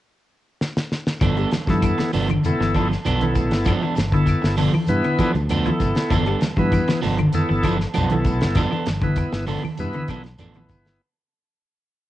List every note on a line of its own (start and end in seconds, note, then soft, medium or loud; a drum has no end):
0.61 snare medium
0.77 snare medium
0.92 snare medium
1.07 snare medium
1.21 1.44 G1 medium
1.21 1.33 E3 medium
1.21 1.37 F3 medium
1.21 1.37 B3 medium
1.21 1.37 D4 medium
1.21 1.37 A4 medium
1.21 kick medium
1.21 closed hi-hat medium
1.21 low conga medium
1.21 claves medium
1.21 shekere medium
1.37 1.61 G3 medium
1.37 1.51 B3 soft
1.37 1.51 D4 soft
1.37 1.51 A4 soft
1.37 closed hi-hat soft
1.37 shekere soft
1.51 muted clean electric guitar stroke soft
1.51 snare medium
1.51 closed hi-hat soft
1.51 high conga medium
1.51 shekere medium
1.67 1.91 G2 medium
1.67 1.80 F3 medium
1.67 2.11 B3 medium
1.67 2.11 E4 medium
1.67 2.11 A4 medium
1.67 kick medium
1.67 snare soft
1.67 high conga medium
1.67 shekere soft
1.82 1.95 E3 medium
1.82 muted clean electric guitar stroke soft
1.82 kick medium
1.82 closed hi-hat medium
1.82 claves medium
1.82 shekere medium
1.98 2.22 E3 medium
1.98 muted clean electric guitar stroke soft
1.98 muted fingered electric bass stroke soft
1.98 snare medium
1.98 closed hi-hat soft
1.98 shekere soft
2.13 2.37 G1 medium
2.13 2.29 F3 medium
2.13 2.28 B3 medium
2.13 2.28 D4 medium
2.13 2.28 A4 loud
2.13 open hi-hat medium
2.13 low conga medium
2.13 shekere medium
2.29 2.53 D3 medium
2.29 muted clean electric guitar stroke soft
2.29 closed hi-hat soft
2.29 high conga medium
2.29 claves medium
2.29 shekere soft
2.44 2.88 B3 medium
2.44 2.88 E4 medium
2.44 2.88 A4 loud
2.44 closed hi-hat medium
2.44 low conga medium
2.44 shekere medium
2.60 2.95 G1 medium
2.60 2.72 E3 medium
2.60 muted clean electric guitar stroke soft
2.60 snare soft
2.60 shekere soft
2.74 2.90 F3 medium
2.74 2.99 F3 medium
2.74 2.90 B3 medium
2.74 2.89 D4 medium
2.74 2.89 A4 medium
2.74 kick medium
2.74 snare soft
2.74 closed hi-hat medium
2.74 high conga medium
2.74 claves medium
2.74 shekere medium
2.90 muted clean electric guitar stroke soft
2.90 snare soft
2.90 shekere soft
3.05 3.52 B1 medium
3.05 3.24 F3 medium
3.05 3.24 B3 medium
3.05 3.24 D4 medium
3.05 3.24 A4 medium
3.05 closed hi-hat medium
3.05 claves medium
3.05 shekere medium
3.20 3.73 B3 medium
3.20 3.72 E4 medium
3.20 3.73 A4 medium
3.20 closed hi-hat soft
3.20 high conga medium
3.20 shekere soft
3.35 muted clean electric guitar stroke soft
3.35 kick medium
3.35 closed hi-hat soft
3.35 low conga medium
3.35 shekere medium
3.51 3.75 G1 medium
3.51 muted clean electric guitar stroke soft
3.51 snare medium
3.51 closed hi-hat soft
3.51 shekere soft
3.65 3.82 F3 medium
3.65 3.82 B3 medium
3.65 3.81 D4 medium
3.65 3.81 A4 medium
3.65 kick medium
3.65 closed hi-hat medium
3.65 claves medium
3.65 shekere medium
3.82 4.06 E3 medium
3.82 3.95 B3 soft
3.82 3.95 D4 medium
3.82 3.95 A4 medium
3.82 shekere soft
3.95 4.33 G1 medium
3.95 muted clean electric guitar stroke soft
3.95 snare medium
3.95 closed hi-hat medium
3.95 high conga medium
3.95 shekere medium
4.12 4.37 D3 medium
4.12 4.56 B3 medium
4.12 4.56 E4 medium
4.12 4.56 A4 medium
4.12 kick medium
4.12 closed hi-hat soft
4.12 shekere soft
4.26 muted clean electric guitar stroke soft
4.26 kick medium
4.26 closed hi-hat medium
4.26 claves medium
4.26 shekere medium
4.42 4.67 G1 loud
4.42 muted clean electric guitar stroke soft
4.42 snare medium
4.42 shekere soft
4.57 4.71 D3 medium
4.57 4.73 F3 medium
4.57 4.72 B3 medium
4.57 4.72 D4 medium
4.57 4.72 A4 loud
4.57 open hi-hat medium
4.57 low conga medium
4.57 shekere medium
4.73 4.97 E3 medium
4.73 muted clean electric guitar stroke soft
4.73 high conga medium
4.73 claves medium
4.73 shekere soft
4.87 5.01 G2 medium
4.87 5.32 B3 medium
4.87 5.32 E4 medium
4.87 5.32 B4 loud
4.87 closed hi-hat medium
4.87 low conga medium
4.87 shekere medium
5.03 5.16 D3 medium
5.03 muted clean electric guitar stroke soft
5.03 closed hi-hat soft
5.03 shekere soft
5.19 5.43 E3 medium
5.19 5.35 F3 medium
5.19 5.35 B3 medium
5.19 5.34 D4 medium
5.19 5.34 A4 medium
5.19 kick medium
5.19 closed hi-hat soft
5.19 high conga medium
5.19 claves medium
5.19 shekere medium
5.35 5.69 D2 medium
5.35 muted clean electric guitar stroke soft
5.35 closed hi-hat soft
5.35 shekere soft
5.49 5.69 F3 medium
5.49 5.69 B3 medium
5.49 5.69 D4 medium
5.49 5.69 A4 medium
5.49 closed hi-hat medium
5.49 claves medium
5.49 shekere medium
5.66 5.89 F3 medium
5.66 6.17 B3 medium
5.66 6.17 E4 medium
5.66 6.17 A4 medium
5.66 closed hi-hat soft
5.66 high conga medium
5.66 shekere soft
5.80 5.92 G1 medium
5.80 muted clean electric guitar stroke soft
5.80 kick medium
5.80 closed hi-hat soft
5.80 low conga medium
5.80 shekere medium
5.95 muted clean electric guitar stroke soft
5.95 snare medium
5.95 closed hi-hat soft
5.95 shekere soft
6.10 6.34 G1 medium
6.10 6.24 E3 medium
6.10 6.27 F3 medium
6.10 6.26 B3 medium
6.10 6.26 D4 medium
6.10 6.25 A4 medium
6.10 kick medium
6.10 closed hi-hat medium
6.10 claves medium
6.10 shekere medium
6.26 6.51 G3 medium
6.26 6.40 B3 soft
6.26 6.41 D4 soft
6.26 6.41 A4 medium
6.26 closed hi-hat soft
6.26 shekere soft
6.41 muted clean electric guitar stroke soft
6.41 snare medium
6.41 closed hi-hat soft
6.41 high conga medium
6.41 shekere medium
6.57 6.81 G2 medium
6.57 6.69 F3 medium
6.57 7.01 B3 medium
6.57 7.00 E4 medium
6.57 7.01 B4 medium
6.57 kick medium
6.57 high conga medium
6.57 shekere soft
6.72 6.85 E3 medium
6.72 muted clean electric guitar stroke soft
6.72 kick medium
6.72 closed hi-hat medium
6.72 claves medium
6.72 shekere medium
6.88 7.12 E3 medium
6.88 muted clean electric guitar stroke medium
6.88 muted fingered electric bass stroke soft
6.88 snare medium
6.88 closed hi-hat soft
6.88 shekere soft
7.02 7.27 G1 medium
7.02 7.18 F3 medium
7.02 7.18 B3 medium
7.02 7.17 D4 medium
7.02 7.17 A4 loud
7.02 open hi-hat medium
7.02 low conga medium
7.02 shekere medium
7.18 7.43 D3 medium
7.18 muted clean electric guitar stroke soft
7.18 closed hi-hat soft
7.18 high conga medium
7.18 claves medium
7.18 shekere soft
7.33 7.77 B3 medium
7.33 7.77 E4 medium
7.33 7.77 A4 loud
7.33 closed hi-hat medium
7.33 high conga medium
7.33 shekere medium
7.49 7.85 G1 medium
7.49 7.61 E3 medium
7.49 muted clean electric guitar stroke soft
7.49 shekere soft
7.63 7.79 F3 medium
7.63 7.88 F3 medium
7.63 7.78 B3 medium
7.63 7.79 D4 medium
7.63 7.78 A4 medium
7.63 kick medium
7.63 closed hi-hat medium
7.63 high conga medium
7.63 claves medium
7.63 shekere medium
7.79 muted clean electric guitar stroke soft
7.79 snare soft
7.79 shekere soft
7.94 8.44 B1 medium
7.94 8.13 F3 medium
7.94 8.13 B3 medium
7.94 8.13 D4 medium
7.94 8.14 A4 medium
7.94 closed hi-hat medium
7.94 claves medium
7.94 shekere medium
8.10 8.62 B3 medium
8.10 8.62 E4 medium
8.10 8.62 A4 medium
8.10 closed hi-hat soft
8.10 high conga medium
8.10 shekere soft
8.24 muted clean electric guitar stroke soft
8.24 kick medium
8.24 closed hi-hat soft
8.24 low conga medium
8.24 shekere medium
8.41 8.65 G1 medium
8.41 muted clean electric guitar stroke soft
8.41 snare medium
8.41 closed hi-hat soft
8.55 8.72 F3 medium
8.55 8.72 B3 medium
8.55 8.71 D4 medium
8.55 8.71 A4 medium
8.55 kick medium
8.55 closed hi-hat medium
8.55 claves medium
8.55 shekere medium
8.72 8.95 E3 medium
8.72 8.85 B3 soft
8.72 8.86 D4 soft
8.72 8.86 A4 medium
8.72 shekere soft
8.86 9.22 G1 medium
8.86 muted clean electric guitar stroke soft
8.86 snare medium
8.86 closed hi-hat soft
8.86 high conga medium
8.86 shekere medium
9.01 9.26 D3 medium
9.01 9.46 B3 medium
9.01 9.45 E4 medium
9.01 9.45 B4 medium
9.01 kick medium
9.01 closed hi-hat soft
9.01 high conga medium
9.01 shekere soft
9.16 muted clean electric guitar stroke soft
9.16 kick medium
9.16 closed hi-hat medium
9.16 claves medium
9.16 shekere medium
9.33 9.56 G1 medium
9.33 muted clean electric guitar stroke soft
9.33 snare medium
9.33 shekere soft
9.47 9.60 D3 medium
9.47 9.63 F3 medium
9.47 9.63 B3 medium
9.47 9.63 D4 medium
9.47 9.62 A4 loud
9.47 open hi-hat medium
9.47 low conga medium
9.47 shekere medium
9.63 9.87 E3 medium
9.63 muted clean electric guitar stroke soft
9.63 high conga medium
9.63 claves medium
9.63 shekere soft
9.77 9.91 G2 medium
9.77 10.22 B3 medium
9.77 10.22 E4 medium
9.77 10.22 B4 medium
9.77 closed hi-hat medium
9.77 high conga medium
9.77 low conga medium
9.77 shekere medium
9.93 10.06 D3 medium
9.93 muted clean electric guitar stroke soft
9.93 closed hi-hat soft
9.93 high conga medium
9.93 shekere soft
10.08 10.36 B1 medium
10.08 10.33 E3 medium
10.08 10.25 F3 medium
10.08 10.24 B3 medium
10.08 10.24 D4 medium
10.08 10.23 A4 medium
10.08 kick medium
10.08 closed hi-hat soft
10.08 high conga medium
10.08 claves medium
10.08 shekere medium
10.24 muted clean electric guitar stroke soft
10.24 snare soft
10.24 closed hi-hat soft
10.38 10.68 A1 medium
10.38 10.58 F3 medium
10.38 10.58 B3 medium
10.38 10.58 D4 medium
10.38 10.58 A4 loud
10.38 closed hi-hat medium
10.38 claves medium
10.38 shekere medium
10.54 10.79 F3 medium
10.54 11.02 B3 medium
10.54 11.01 E4 medium
10.54 11.01 B4 medium
10.54 closed hi-hat soft
10.54 high conga medium
10.54 shekere soft
10.68 10.97 G1 medium
10.68 muted clean electric guitar stroke soft
10.68 kick medium
10.68 closed hi-hat soft
10.68 low conga medium
10.68 shekere medium
10.85 muted clean electric guitar stroke soft
10.85 snare medium
10.85 closed hi-hat soft